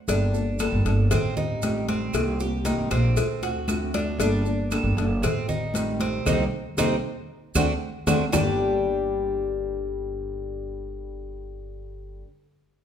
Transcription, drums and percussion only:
0.08 cowbell, high conga, maracas
0.34 high conga, maracas
0.59 cowbell, high conga, claves, maracas
0.86 cowbell, maracas
1.11 cowbell, high conga, low conga, claves, maracas
1.37 high conga, low conga, maracas
1.62 cowbell, high conga, maracas
1.89 cowbell, high conga, maracas
2.13 cowbell, high conga, claves, maracas
2.40 high conga, maracas
2.65 cowbell, high conga, maracas
2.91 cowbell, high conga, claves, maracas
3.17 cowbell, high conga, maracas
3.42 cowbell, high conga, maracas
3.68 cowbell, high conga, claves, maracas
3.94 cowbell, high conga, maracas
4.20 cowbell, high conga, maracas
4.46 high conga, maracas
4.71 cowbell, high conga, claves, maracas
4.98 cowbell, maracas
5.23 cowbell, high conga, low conga, claves, maracas
5.49 high conga, low conga, maracas
5.74 cowbell, high conga, maracas
6.00 cowbell, high conga, maracas
6.26 cowbell, low conga, claves, maracas
6.78 cowbell, low conga, claves, maracas
7.55 cowbell, low conga, claves, maracas
8.07 cowbell, low conga, claves, maracas
8.33 low bongo, low conga, claves, maracas

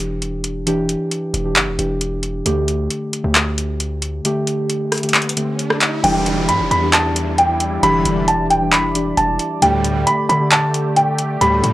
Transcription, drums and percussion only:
0.22 closed hi-hat
0.44 closed hi-hat
0.67 closed hi-hat
0.89 closed hi-hat
1.11 closed hi-hat
1.34 closed hi-hat
1.56 clap, closed hi-hat
1.79 closed hi-hat
2.01 closed hi-hat
2.23 closed hi-hat
2.46 closed hi-hat
2.68 closed hi-hat
2.90 closed hi-hat
3.13 closed hi-hat
3.35 clap, closed hi-hat
3.58 closed hi-hat
3.80 closed hi-hat
4.02 closed hi-hat
4.25 closed hi-hat
4.47 closed hi-hat
4.70 closed hi-hat
4.92 cross-stick, closed hi-hat, open hi-hat
4.98 closed hi-hat
5.03 closed hi-hat
5.09 closed hi-hat
5.14 clap, closed hi-hat
5.22 closed hi-hat
5.29 closed hi-hat
5.37 closed hi-hat
5.59 closed hi-hat
5.70 cross-stick
5.81 clap, closed hi-hat
6.04 closed hi-hat, crash
6.26 closed hi-hat
6.49 closed hi-hat
6.71 closed hi-hat
6.93 clap, closed hi-hat
7.16 closed hi-hat
7.38 closed hi-hat
7.60 closed hi-hat
7.83 closed hi-hat
8.05 closed hi-hat
8.28 closed hi-hat
8.50 closed hi-hat
8.73 clap, closed hi-hat
8.95 closed hi-hat
9.17 closed hi-hat
9.39 closed hi-hat
9.62 closed hi-hat
9.84 closed hi-hat
10.07 closed hi-hat
10.30 closed hi-hat
10.52 clap, closed hi-hat
10.74 closed hi-hat
10.96 closed hi-hat
11.18 closed hi-hat
11.41 closed hi-hat
11.64 closed hi-hat

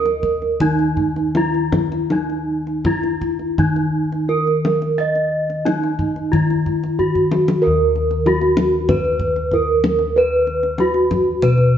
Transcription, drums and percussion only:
0.05 kendang slap
0.23 kendang low
0.42 kendang slap
0.60 kendang low
0.79 kendang slap
0.97 kendang low
1.16 kendang slap
1.35 kendang high
1.54 kendang slap
1.72 kendang high, kendang low
1.92 kendang slap
2.10 kendang high
2.30 kendang slap
2.67 kendang slap
2.85 kendang high, kendang low
3.03 kendang slap
3.21 kendang low
3.39 kendang slap
3.58 kendang low
3.76 kendang slap
4.12 kendang slap
4.47 kendang slap
4.65 kendang high
4.82 kendang slap
5.15 kendang slap
5.50 kendang slap
5.66 kendang high
5.84 kendang slap
5.99 kendang low
6.16 kendang slap
6.33 kendang low
6.50 kendang slap
6.66 kendang low
6.83 kendang slap
6.99 kendang low
7.15 kendang low
7.31 kendang high
7.48 kendang high
7.96 kendang slap
8.11 kendang slap
8.26 kendang slap, kendang high
8.41 kendang slap
8.57 kendang slap, kendang high
8.89 kendang high, kendang low
9.04 kendang slap
9.20 kendang low
9.36 kendang slap
9.51 kendang slap, kendang low
9.84 kendang slap, kendang high
9.99 kendang slap
10.47 kendang slap
10.63 kendang slap
10.78 kendang slap, kendang high
10.94 kendang slap
11.11 kendang slap, kendang high, kendang low
11.42 kendang low
11.58 kendang slap

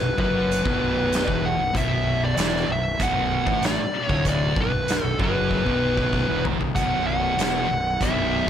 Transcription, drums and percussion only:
0.18 kick
0.52 closed hi-hat
0.66 kick
1.13 snare, closed hi-hat
1.28 kick
1.75 kick, closed hi-hat
2.37 snare, closed hi-hat
2.56 snare
3.00 kick, closed hi-hat
3.47 kick
3.63 snare, closed hi-hat
4.09 kick
4.25 kick, closed hi-hat
4.56 kick
4.88 snare, closed hi-hat
5.20 kick
5.51 kick
5.67 kick
5.97 kick
6.13 kick
6.45 floor tom
6.61 floor tom
6.76 kick, closed hi-hat
7.39 snare, closed hi-hat
8.01 kick, closed hi-hat

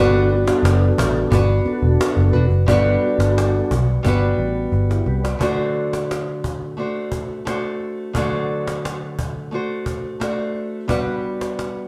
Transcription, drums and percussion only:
0.12 cajon slap
0.29 cajon slap
0.47 cajon slap
0.65 cajon slap
0.81 cajon slap
0.98 cajon bass, cajon slap
1.15 cajon slap
1.32 cajon bass
1.49 cajon slap
1.66 cajon slap
1.83 cajon slap
2.01 cajon slap
2.17 cajon slap
2.33 cajon slap
2.51 cajon slap
2.68 cajon bass
3.02 cajon slap
3.20 cajon slap
3.38 cajon slap
3.71 cajon bass
4.05 cajon bass
4.39 cajon slap
4.72 cajon slap
4.91 cajon slap
5.06 cajon slap
5.25 cajon slap
5.41 cajon bass
5.75 cajon slap
5.93 cajon slap
6.11 cajon slap
6.44 cajon bass
6.78 cajon slap
7.12 cajon bass
7.47 cajon slap
7.80 cajon slap
8.15 cajon bass
8.49 cajon slap
8.67 cajon slap
8.85 cajon slap
9.19 cajon bass
9.52 cajon slap
9.86 cajon bass
10.21 cajon slap
10.55 cajon slap
10.89 cajon bass
11.23 cajon slap
11.41 cajon slap
11.59 cajon slap

